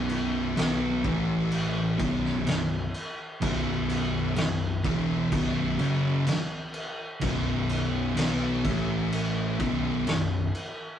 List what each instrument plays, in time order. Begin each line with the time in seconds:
Already playing: picked electric bass B0, distorted electric guitar B1 F#2 B2
0.09 crash
0.57 picked electric bass B1, distorted electric guitar B2 F#3 B3, snare, crash
1.04 picked electric bass A1, distorted electric guitar A2 E3 A3, kick, crash
1.52 crash
1.99 picked electric bass B0, distorted electric guitar B1 F#2 B2, kick, crash
2.25 snare
2.47 picked electric bass B0, distorted electric guitar B1 F#2, snare, crash
2.94 crash
3.42 picked electric bass B0, distorted electric guitar B1 F#2 B2, kick, crash
3.90 crash
4.36 picked electric bass B0, distorted electric guitar B1 F#2, snare, crash
4.84 picked electric bass E1, distorted electric guitar E2 B2 E3, kick, crash
5.32 picked electric bass B0, distorted electric guitar B1 F#2 B2, kick, crash
5.79 picked electric bass F#1, distorted electric guitar F#2 C#3 F#3, crash
6.27 muted picked electric bass stroke, muted distorted electric guitar stroke, snare, crash
6.74 crash
7.21 picked electric bass B0, distorted electric guitar B1 F#2 B2, kick, crash
7.69 crash
8.16 picked electric bass B1, distorted electric guitar B2 F#3 B3, snare, crash
8.65 picked electric bass A1, distorted electric guitar A2 E3 A3, kick, crash
9.12 crash
9.59 picked electric bass B0, distorted electric guitar B1 F#2 B2, kick, crash
10.06 picked electric bass B0, distorted electric guitar B1 F#2, snare, crash
10.55 crash